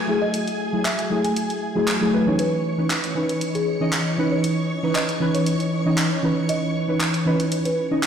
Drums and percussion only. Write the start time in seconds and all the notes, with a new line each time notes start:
0.34 closed hi-hat
0.48 closed hi-hat
0.85 clap, closed hi-hat
0.99 closed hi-hat
1.25 closed hi-hat
1.36 closed hi-hat
1.50 closed hi-hat
1.88 clap, closed hi-hat
2.39 closed hi-hat
2.90 clap, closed hi-hat
3.04 closed hi-hat
3.29 closed hi-hat
3.41 closed hi-hat
3.55 closed hi-hat
3.93 clap, closed hi-hat
4.44 closed hi-hat
4.95 clap, closed hi-hat
5.09 closed hi-hat
5.35 closed hi-hat
5.46 closed hi-hat
5.60 closed hi-hat
5.98 clap, closed hi-hat
6.49 closed hi-hat
7.00 clap, closed hi-hat
7.14 closed hi-hat
7.40 closed hi-hat
7.52 closed hi-hat
7.65 closed hi-hat
8.03 clap, closed hi-hat